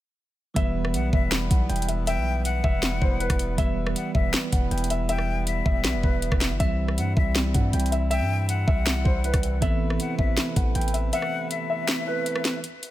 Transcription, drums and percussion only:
0.56 kick, closed hi-hat
0.85 cross-stick
0.94 closed hi-hat
1.13 kick
1.32 snare, closed hi-hat
1.51 kick, closed hi-hat
1.70 closed hi-hat
1.76 closed hi-hat
1.82 closed hi-hat
1.89 closed hi-hat
2.07 closed hi-hat
2.45 closed hi-hat
2.64 kick
2.83 snare, closed hi-hat
3.02 kick
3.20 closed hi-hat
3.30 kick, cross-stick, closed hi-hat
3.39 closed hi-hat
3.58 kick, closed hi-hat
3.87 cross-stick
3.96 closed hi-hat
4.15 kick
4.34 snare, closed hi-hat
4.53 kick, closed hi-hat
4.71 closed hi-hat
4.78 closed hi-hat
4.84 closed hi-hat
4.90 closed hi-hat
5.09 closed hi-hat
5.18 cross-stick
5.47 closed hi-hat
5.66 kick
5.84 snare, closed hi-hat
6.03 kick
6.22 closed hi-hat
6.32 kick, cross-stick
6.41 snare, closed hi-hat
6.60 kick, closed hi-hat
6.88 cross-stick
6.98 closed hi-hat
7.17 kick
7.35 snare, closed hi-hat
7.54 kick, closed hi-hat
7.73 closed hi-hat
7.80 closed hi-hat
7.86 closed hi-hat
7.92 closed hi-hat
8.11 closed hi-hat
8.49 closed hi-hat
8.68 kick
8.86 snare, closed hi-hat
9.05 kick
9.24 closed hi-hat
9.34 kick, cross-stick, closed hi-hat
9.43 closed hi-hat
9.62 kick, closed hi-hat
9.90 cross-stick
10.00 closed hi-hat
10.19 kick
10.37 snare, closed hi-hat
10.56 kick, closed hi-hat
10.75 closed hi-hat
10.81 closed hi-hat
10.88 closed hi-hat
10.94 closed hi-hat
11.13 closed hi-hat
11.22 cross-stick
11.51 closed hi-hat
11.88 snare, closed hi-hat
12.26 closed hi-hat
12.36 cross-stick
12.45 snare, closed hi-hat
12.64 closed hi-hat
12.83 closed hi-hat

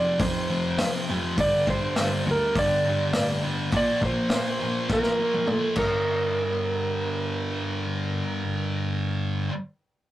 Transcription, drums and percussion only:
0.19 kick, open hi-hat
0.78 snare, open hi-hat
1.38 kick, open hi-hat
1.67 kick
1.96 snare, open hi-hat
2.55 kick, open hi-hat
3.13 snare, open hi-hat
3.71 kick, open hi-hat
4.02 kick
4.30 snare, open hi-hat
4.89 kick, snare
5.03 snare
5.34 high tom
5.47 mid tom
5.76 kick, crash

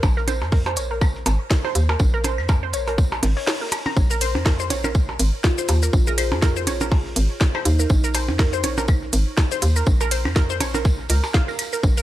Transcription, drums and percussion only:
0.03 kick, tambourine, percussion blips
0.17 snare
0.28 closed hi-hat, tambourine, percussion blips
0.42 snare, percussion blips
0.52 kick, snare, open hi-hat
0.66 closed hi-hat, percussion blips
0.76 closed hi-hat, tambourine
1.01 kick, tambourine, claves, percussion blips
1.15 snare
1.26 closed hi-hat, tambourine, percussion blips
1.50 kick, snare, tambourine
1.65 snare, percussion blips
1.75 closed hi-hat, tambourine
1.89 snare, percussion blips
1.99 kick, tambourine
2.24 closed hi-hat, tambourine, percussion blips
2.38 snare, claves
2.48 kick, snare, tambourine, percussion blips
2.73 closed hi-hat, tambourine
2.87 closed hi-hat, percussion blips
2.98 kick, tambourine
3.12 snare, percussion blips
3.23 snare, closed hi-hat, open hi-hat, percussion blips
3.37 snare, open hi-hat
3.47 snare, open hi-hat, percussion blips
3.54 snare, open hi-hat
3.61 snare, open hi-hat
3.67 snare, open hi-hat
3.71 closed hi-hat, tambourine, claves, percussion blips
3.85 snare, percussion blips
3.97 kick, tambourine
4.10 snare, shaker
4.21 closed hi-hat, ride, tambourine, shaker
4.35 snare, percussion blips
4.45 kick, snare, open hi-hat, percussion blips
4.60 closed hi-hat, shaker
4.70 closed hi-hat, ride, tambourine, percussion blips
4.84 percussion blips, claves, shaker
4.95 kick, tambourine
5.09 snare, percussion blips
5.19 closed hi-hat, ride, tambourine, shaker
5.44 kick, snare, tambourine
5.58 snare, shaker
5.68 closed hi-hat, ride, tambourine, percussion blips
5.83 snare, shaker
5.93 kick, tambourine
6.07 shaker
6.18 closed hi-hat, ride, tambourine, claves
6.32 snare, percussion blips
6.42 kick, snare, tambourine
6.56 shaker
6.67 closed hi-hat, ride, tambourine, percussion blips
6.80 closed hi-hat, percussion blips, shaker
6.91 kick, snare, open hi-hat, percussion blips
7.05 snare
7.16 closed hi-hat, ride, tambourine
7.40 kick, snare, tambourine
7.55 snare, claves, percussion blips
7.65 closed hi-hat, ride, tambourine
7.79 snare, shaker
7.89 kick, tambourine
8.04 snare, shaker
8.14 closed hi-hat, ride, tambourine, percussion blips, shaker
8.28 snare, percussion blips
8.39 kick, snare, open hi-hat
8.53 closed hi-hat, shaker
8.63 closed hi-hat, ride, tambourine, percussion blips
8.78 percussion blips, shaker
8.88 kick, tambourine, claves
9.02 snare
9.13 closed hi-hat, ride, tambourine, shaker
9.37 kick, snare, tambourine, percussion blips
9.51 snare, shaker
9.62 closed hi-hat, ride, tambourine
9.76 snare, shaker
9.86 kick, tambourine
10.01 percussion blips, shaker
10.11 closed hi-hat, ride, tambourine
10.25 snare, percussion blips, claves
10.36 kick, snare, tambourine
10.50 shaker
10.60 closed hi-hat, ride, tambourine, percussion blips
10.74 closed hi-hat, percussion blips, shaker
10.85 kick, snare, tambourine
10.99 snare
11.09 closed hi-hat, ride, tambourine
11.23 snare, tambourine, percussion blips
11.34 kick, snare
11.48 tambourine
11.59 closed hi-hat, ride, tambourine, claves
11.73 snare, shaker
11.83 kick, tambourine
11.97 snare, shaker

